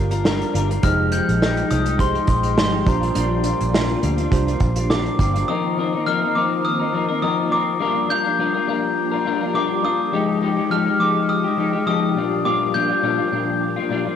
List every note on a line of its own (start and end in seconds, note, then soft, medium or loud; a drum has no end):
0.00 0.42 G1 medium
0.00 5.45 F3 medium
0.00 0.81 A#3 medium
0.00 0.13 D4 soft
0.00 0.81 D4 medium
0.00 0.85 D4 medium
0.00 0.11 F4 medium
0.00 0.85 F4 medium
0.00 0.81 G4 medium
0.00 0.83 G4 medium
0.00 0.85 A#4 medium
0.00 0.21 F6 medium
0.11 0.24 D4 soft
0.11 0.24 F4 medium
0.11 0.25 A#4 medium
0.11 closed hi-hat soft
0.24 0.52 G3 medium
0.24 0.53 D4 medium
0.24 0.54 F4 medium
0.24 0.55 A#4 medium
0.24 snare loud
0.41 closed hi-hat soft
0.53 0.78 G1 medium
0.53 0.70 G3 medium
0.53 0.70 D4 medium
0.53 0.70 F4 medium
0.53 0.68 A#4 medium
0.53 closed hi-hat medium
0.69 0.84 D4 soft
0.69 0.84 F4 soft
0.69 0.83 A#4 soft
0.69 closed hi-hat soft
0.82 1.19 F1 loud
0.82 1.11 F3 medium
0.82 2.85 G#3 medium
0.82 1.12 G#3 medium
0.82 1.89 D#4 medium
0.82 2.85 D#4 medium
0.82 1.13 D#4 medium
0.82 1.89 G4 medium
0.82 1.13 G4 medium
0.82 1.90 G#4 medium
0.82 1.90 C5 medium
0.82 5.45 G5 medium
0.82 0.96 F6 loud
0.82 kick loud
0.82 closed hi-hat loud
1.12 1.40 F3 medium
1.12 1.41 G#3 medium
1.12 1.41 D#4 medium
1.12 1.42 G4 medium
1.12 1.66 G6 medium
1.12 closed hi-hat medium
1.29 1.62 A#1 medium
1.29 closed hi-hat soft
1.41 1.68 F3 medium
1.41 1.69 G#3 medium
1.41 1.70 D#4 medium
1.41 1.71 G4 medium
1.41 snare loud
1.57 closed hi-hat soft
1.69 2.17 C2 medium
1.69 1.86 F3 medium
1.69 1.87 G#3 medium
1.69 1.86 D#4 medium
1.69 1.84 G4 medium
1.69 2.00 D#6 medium
1.69 closed hi-hat medium
1.85 2.16 G#3 soft
1.85 2.15 D#4 medium
1.85 2.13 G4 medium
1.85 closed hi-hat medium
1.98 2.86 D#4 medium
1.98 2.86 G4 medium
1.98 2.87 G#4 medium
1.98 2.87 C5 medium
1.98 2.29 C6 medium
1.98 kick medium
1.98 closed hi-hat medium
2.14 2.46 G#3 soft
2.14 2.44 D#4 soft
2.14 2.42 G4 medium
2.14 closed hi-hat soft
2.27 2.58 A#1 medium
2.27 2.58 C6 medium
2.27 kick medium
2.27 closed hi-hat medium
2.43 2.56 G#3 soft
2.43 2.57 D#4 soft
2.43 2.57 G4 soft
2.43 closed hi-hat soft
2.57 2.81 G#1 medium
2.57 2.86 F3 medium
2.57 2.86 G#3 medium
2.57 2.87 D#4 medium
2.57 2.87 G4 medium
2.57 2.88 C6 medium
2.57 snare loud
2.85 3.10 A#1 medium
2.85 3.02 A#2 medium
2.85 3.03 G3 medium
2.85 5.46 A#3 medium
2.85 3.92 D4 medium
2.85 5.46 D4 medium
2.85 3.02 D4 medium
2.85 3.92 F4 medium
2.85 3.00 F4 medium
2.85 3.93 G4 medium
2.85 3.93 C5 medium
2.85 4.00 A#5 medium
2.85 kick loud
2.85 closed hi-hat medium
3.01 3.14 G3 soft
3.01 3.15 D4 soft
3.01 3.15 F4 soft
3.01 closed hi-hat soft
3.14 3.52 A#1 loud
3.14 3.42 A#2 medium
3.14 3.43 G3 medium
3.14 3.45 D4 medium
3.14 3.45 F4 medium
3.14 closed hi-hat medium
3.44 3.72 A#2 medium
3.44 3.72 G3 medium
3.44 3.73 D4 medium
3.44 3.74 F4 medium
3.44 closed hi-hat medium
3.61 3.95 A#1 medium
3.61 closed hi-hat medium
3.73 4.00 A#2 medium
3.73 4.01 G3 medium
3.73 4.02 D4 medium
3.73 4.03 F4 medium
3.73 snare loud
3.90 closed hi-hat soft
4.01 4.26 D2 medium
4.01 4.18 A#2 medium
4.01 4.19 G3 medium
4.01 4.18 D4 medium
4.01 4.16 F4 medium
4.01 closed hi-hat medium
4.17 4.49 G3 medium
4.17 4.47 D4 medium
4.17 4.45 F4 medium
4.17 closed hi-hat soft
4.30 4.55 C2 medium
4.30 5.37 D4 medium
4.30 5.38 F4 medium
4.30 5.38 G4 medium
4.30 5.38 C5 medium
4.30 kick medium
4.30 closed hi-hat medium
4.47 4.78 G3 soft
4.47 4.77 D4 medium
4.47 4.75 F4 medium
4.47 closed hi-hat soft
4.60 5.07 A#1 medium
4.60 kick medium
4.60 closed hi-hat medium
4.76 4.90 G3 soft
4.76 4.91 D4 medium
4.76 4.90 F4 medium
4.76 closed hi-hat medium
4.90 5.17 A#2 medium
4.90 5.19 G3 medium
4.90 5.19 D4 medium
4.90 5.20 F4 medium
4.90 5.17 A#5 medium
4.90 5.44 D6 medium
4.90 snare loud
5.06 closed hi-hat soft
5.18 5.42 G1 medium
5.18 5.35 A#2 medium
5.18 5.36 G3 medium
5.18 5.35 D4 medium
5.18 5.33 F4 medium
5.18 5.46 G5 medium
5.18 kick medium
5.18 closed hi-hat medium
5.34 5.48 G3 soft
5.34 5.48 D4 medium
5.34 5.48 F4 medium
5.34 closed hi-hat soft
5.48 7.78 D#3 medium
5.48 5.75 F3 medium
5.48 7.78 A#3 medium
5.48 5.77 C4 medium
5.48 7.79 C4 medium
5.48 5.78 D#4 medium
5.48 7.78 F4 medium
5.48 5.78 A#4 medium
5.48 6.08 D#6 loud
5.77 5.93 F3 medium
5.77 5.94 C4 medium
5.77 5.94 D#4 medium
5.77 5.92 A#4 medium
5.93 6.06 C4 medium
5.93 6.07 D#4 medium
5.93 6.06 A#4 medium
6.06 6.22 F3 medium
6.06 6.23 C4 medium
6.06 6.23 D#4 medium
6.06 6.21 A#4 medium
6.06 6.36 F6 loud
6.22 6.35 C4 soft
6.22 6.36 D#4 medium
6.22 6.35 A#4 medium
6.35 6.80 F3 medium
6.35 6.81 C4 medium
6.35 6.80 D#4 medium
6.35 6.78 A#4 medium
6.35 6.48 D6 medium
6.65 7.21 D#6 loud
6.79 6.93 C4 soft
6.79 6.94 D#4 medium
6.79 6.93 A#4 medium
6.93 7.09 F3 medium
6.93 7.10 C4 medium
6.93 7.09 D#4 medium
6.93 7.07 A#4 medium
7.09 7.22 C4 soft
7.09 7.22 D#4 soft
7.09 7.22 A#4 medium
7.22 7.49 F3 medium
7.22 7.50 C4 medium
7.22 7.52 D#4 medium
7.22 7.52 A#4 medium
7.22 7.52 D#6 loud
7.50 7.79 F3 medium
7.50 7.80 C4 medium
7.50 7.81 D#4 medium
7.50 7.81 A#4 medium
7.50 8.12 D6 medium
7.79 10.10 F3 medium
7.79 8.07 G3 medium
7.79 10.10 A#3 medium
7.79 10.10 D4 medium
7.79 8.09 D4 medium
7.79 8.10 F4 medium
7.79 14.16 G4 medium
7.79 8.10 A#4 loud
8.09 8.25 G3 medium
8.09 8.26 D4 medium
8.09 8.25 F4 medium
8.09 8.23 A#4 medium
8.09 9.59 G6 loud
8.24 8.38 D4 soft
8.24 8.39 F4 medium
8.24 8.38 A#4 medium
8.39 8.55 G3 medium
8.39 8.55 D4 medium
8.39 8.55 F4 medium
8.39 8.53 A#4 medium
8.54 8.67 D4 medium
8.54 8.68 F4 medium
8.54 8.67 A#4 medium
8.67 9.12 G3 medium
8.67 9.13 D4 medium
8.67 9.12 F4 medium
8.67 9.10 A#4 medium
9.12 9.25 D4 medium
9.12 9.26 F4 medium
9.12 9.25 A#4 medium
9.25 9.41 G3 medium
9.25 9.42 D4 medium
9.25 9.42 F4 medium
9.25 9.40 A#4 medium
9.41 9.53 D4 soft
9.41 9.54 F4 soft
9.41 9.54 A#4 medium
9.54 9.81 G3 medium
9.54 9.82 D4 medium
9.54 9.83 F4 medium
9.54 9.84 A#4 loud
9.54 9.85 D6 loud
9.82 10.12 G3 medium
9.82 10.13 D4 medium
9.82 10.13 F4 medium
9.82 10.14 A#4 medium
9.82 10.74 D#6 medium
10.12 10.39 F3 medium
10.12 14.16 F3 medium
10.12 10.41 G#3 medium
10.12 12.14 G#3 medium
10.12 12.14 D#4 medium
10.12 10.42 D#4 medium
10.12 10.43 G4 loud
10.41 10.57 F3 medium
10.41 10.58 G#3 medium
10.41 10.57 D#4 medium
10.41 10.55 G4 medium
10.57 10.70 G#3 soft
10.57 10.70 D#4 medium
10.57 10.70 G4 medium
10.70 10.86 F3 medium
10.70 10.87 G#3 medium
10.70 10.86 D#4 medium
10.70 10.85 G4 medium
10.70 11.01 F6 loud
10.86 10.99 G#3 soft
10.86 11.00 D#4 soft
10.86 10.99 G4 medium
10.98 11.44 F3 medium
10.98 11.45 G#3 medium
10.98 11.45 D#4 medium
10.98 11.43 G4 medium
10.98 11.27 D6 loud
11.29 11.86 D#6 loud
11.44 11.57 G#3 soft
11.44 11.58 D#4 medium
11.44 11.58 G4 medium
11.57 11.73 F3 medium
11.57 11.74 G#3 medium
11.57 11.74 D#4 medium
11.57 11.71 G4 medium
11.73 11.86 G#3 soft
11.73 11.87 D#4 soft
11.73 11.86 G4 medium
11.86 12.16 F3 medium
11.86 12.16 G#3 medium
11.86 12.16 D#4 medium
11.86 12.17 G4 loud
11.86 12.47 D#6 loud
12.15 12.44 A#2 medium
12.15 12.44 G3 medium
12.15 14.16 A#3 medium
12.15 14.16 D4 medium
12.15 12.45 D4 medium
12.15 12.46 F4 medium
12.45 12.72 A#2 medium
12.45 12.74 G3 medium
12.45 12.75 D4 medium
12.45 12.75 F4 medium
12.45 12.75 D6 loud
12.74 12.90 A#2 medium
12.74 12.91 G3 medium
12.74 12.90 D4 medium
12.74 12.88 F4 medium
12.74 14.16 G6 loud
12.89 13.02 G3 soft
12.89 13.02 D4 medium
12.89 13.03 F4 medium
13.02 13.19 A#2 medium
13.02 13.19 G3 medium
13.02 13.19 D4 medium
13.02 13.17 F4 medium
13.18 13.31 G3 soft
13.18 13.32 D4 medium
13.18 13.32 F4 medium
13.31 13.77 A#2 medium
13.31 13.77 G3 medium
13.31 13.77 D4 medium
13.31 13.75 F4 medium
13.76 13.89 G3 medium
13.76 13.90 D4 medium
13.76 13.90 F4 medium
13.89 14.06 A#2 medium
13.89 14.06 G3 medium
13.89 14.06 D4 medium
13.89 14.04 F4 medium
14.05 14.16 G3 soft
14.05 14.16 D4 medium
14.05 14.16 F4 medium